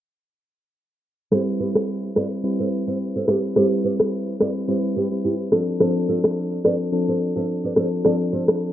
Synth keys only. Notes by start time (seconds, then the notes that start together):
1.32 G3 C4 E4 B4
2.16 G3 C4 E4 B4
2.44 G3 C4 E4 B4
2.87 G3 C4 E4 B4
3.28 G3 C4 E4 B4
3.56 G3 C4 E4 B4
4.40 G3 C4 E4 B4
4.68 G3 C4 E4 B4
5.11 G3 C4 E4 B4
5.52 F3 C4 D4 A4
5.80 F3 C4 D4 A4
6.64 F3 C4 D4 A4
6.92 F3 C4 D4 A4
7.36 F3 C4 D4 A4
7.76 F3 C4 D4 A4
8.04 F3 C4 D4 A4